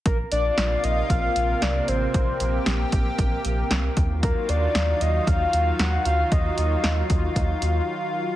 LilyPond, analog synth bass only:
\new Staff \with { instrumentName = "Analog synth bass" } { \clef bass \time 4/4 \key bes \major \tempo 4 = 115 bes,,8 bes,,8 bes,,8 bes,,8 bes,,8 bes,,8 c,8 a,,8 | bes,,8 bes,,8 bes,,8 bes,,8 bes,,8 bes,,8 c,8 ees,8~ | ees,8 ees,8 ees,8 ees,8 ees,8 ees,8 ees,8 d,8 | ees,8 ees,8 ees,8 ees,8 ees,8 ees,8 r4 | }